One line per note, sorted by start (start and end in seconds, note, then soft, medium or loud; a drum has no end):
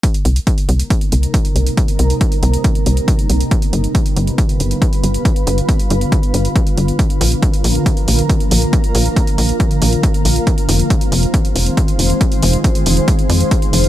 0.03 3.48 C3 medium
0.03 6.95 G3 medium
0.03 3.48 A#3 medium
0.03 3.48 D#4 medium
0.03 3.48 A#4 medium
0.03 kick loud
0.03 closed hi-hat medium
0.14 closed hi-hat medium
0.25 0.40 C2 medium
0.25 closed hi-hat medium
0.36 closed hi-hat soft
0.47 kick loud
0.47 closed hi-hat medium
0.58 closed hi-hat medium
0.69 0.83 C2 loud
0.69 closed hi-hat medium
0.80 closed hi-hat medium
0.90 kick loud
0.90 closed hi-hat medium
1.01 closed hi-hat soft
1.12 1.27 C2 medium
1.12 closed hi-hat medium
1.23 closed hi-hat soft
1.34 kick loud
1.34 closed hi-hat medium
1.45 closed hi-hat soft
1.56 1.70 C2 medium
1.56 closed hi-hat medium
1.67 closed hi-hat soft
1.77 kick loud
1.77 closed hi-hat medium
1.88 closed hi-hat soft
1.99 2.14 C2 medium
1.99 closed hi-hat medium
2.10 closed hi-hat soft
2.21 kick loud
2.21 closed hi-hat medium
2.32 closed hi-hat soft
2.43 2.57 C2 loud
2.43 closed hi-hat medium
2.54 closed hi-hat medium
2.64 kick loud
2.64 closed hi-hat medium
2.75 closed hi-hat soft
2.86 3.01 C2 medium
2.86 closed hi-hat medium
2.97 closed hi-hat soft
3.08 kick loud
3.08 closed hi-hat medium
3.19 closed hi-hat soft
3.30 3.44 C2 medium
3.30 closed hi-hat medium
3.40 closed hi-hat soft
3.51 10.43 D3 medium
3.51 6.96 B3 medium
3.51 13.89 F4 medium
3.51 6.96 B4 medium
3.51 kick loud
3.51 closed hi-hat medium
3.62 closed hi-hat soft
3.73 3.88 G1 medium
3.73 closed hi-hat medium
3.84 closed hi-hat soft
3.95 kick loud
3.95 closed hi-hat medium
4.06 closed hi-hat soft
4.17 4.31 G1 loud
4.17 closed hi-hat medium
4.27 closed hi-hat soft
4.38 kick loud
4.38 closed hi-hat medium
4.49 closed hi-hat soft
4.60 4.75 G1 medium
4.60 closed hi-hat medium
4.71 closed hi-hat soft
4.82 kick loud
4.82 closed hi-hat medium
4.93 closed hi-hat soft
5.03 5.18 G1 medium
5.03 closed hi-hat medium
5.14 closed hi-hat soft
5.25 kick loud
5.25 closed hi-hat medium
5.36 closed hi-hat soft
5.47 5.62 G1 loud
5.47 closed hi-hat medium
5.58 closed hi-hat soft
5.69 kick loud
5.69 closed hi-hat medium
5.79 closed hi-hat soft
5.90 6.05 G1 loud
5.90 closed hi-hat medium
6.01 closed hi-hat soft
6.12 kick loud
6.12 closed hi-hat medium
6.23 closed hi-hat soft
6.34 6.49 G1 medium
6.34 closed hi-hat medium
6.45 closed hi-hat soft
6.56 kick loud
6.56 closed hi-hat medium
6.67 closed hi-hat soft
6.77 6.92 G1 medium
6.77 closed hi-hat medium
6.88 closed hi-hat soft
6.99 10.44 F3 medium
6.99 10.44 A#3 medium
6.99 10.44 A#4 medium
6.99 kick loud
6.99 closed hi-hat medium
7.10 closed hi-hat soft
7.21 7.36 A#1 loud
7.21 open hi-hat loud
7.32 closed hi-hat soft
7.43 kick loud
7.43 closed hi-hat medium
7.54 closed hi-hat soft
7.64 7.79 A#1 loud
7.64 open hi-hat loud
7.75 closed hi-hat soft
7.86 kick loud
7.86 closed hi-hat medium
7.97 closed hi-hat soft
8.08 8.22 A#1 medium
8.08 open hi-hat loud
8.19 closed hi-hat soft
8.30 kick loud
8.30 closed hi-hat medium
8.40 closed hi-hat soft
8.51 8.66 A#1 medium
8.51 open hi-hat loud
8.62 closed hi-hat soft
8.73 kick loud
8.73 closed hi-hat medium
8.84 closed hi-hat soft
8.95 9.09 A#1 loud
8.95 open hi-hat loud
9.06 closed hi-hat soft
9.16 kick loud
9.16 closed hi-hat medium
9.27 closed hi-hat soft
9.38 9.53 A#1 loud
9.38 open hi-hat medium
9.49 closed hi-hat medium
9.60 kick loud
9.60 closed hi-hat medium
9.71 closed hi-hat soft
9.82 9.96 A#1 medium
9.82 open hi-hat loud
9.93 closed hi-hat soft
10.03 kick loud
10.03 closed hi-hat medium
10.14 closed hi-hat soft
10.25 10.40 A#1 medium
10.25 open hi-hat medium
10.36 closed hi-hat soft
10.47 13.89 D#3 medium
10.47 13.89 G#3 medium
10.47 13.89 C4 medium
10.47 13.89 C5 medium
10.47 kick loud
10.47 closed hi-hat medium
10.58 closed hi-hat medium
10.69 10.83 F1 loud
10.69 open hi-hat loud
10.79 closed hi-hat soft
10.90 kick loud
10.90 closed hi-hat medium
11.01 closed hi-hat medium
11.12 11.27 F1 loud
11.12 open hi-hat medium
11.23 closed hi-hat soft
11.34 kick loud
11.34 closed hi-hat medium
11.45 closed hi-hat soft
11.56 11.70 F1 medium
11.56 open hi-hat loud
11.66 closed hi-hat medium
11.77 kick loud
11.77 closed hi-hat medium
11.88 closed hi-hat soft
11.99 12.14 F1 medium
11.99 open hi-hat medium
12.10 closed hi-hat medium
12.21 kick loud
12.21 closed hi-hat medium
12.32 closed hi-hat medium
12.42 12.57 F1 loud
12.42 open hi-hat loud
12.53 closed hi-hat medium
12.64 kick loud
12.64 closed hi-hat medium
12.75 closed hi-hat medium
12.86 13.01 F1 loud
12.86 open hi-hat medium
12.97 closed hi-hat soft
13.08 kick loud
13.08 closed hi-hat medium
13.19 closed hi-hat soft
13.29 13.44 F2 loud
13.29 open hi-hat loud
13.40 closed hi-hat medium
13.51 kick loud
13.51 closed hi-hat medium
13.62 closed hi-hat medium
13.73 13.88 F1 medium
13.73 open hi-hat medium
13.84 closed hi-hat medium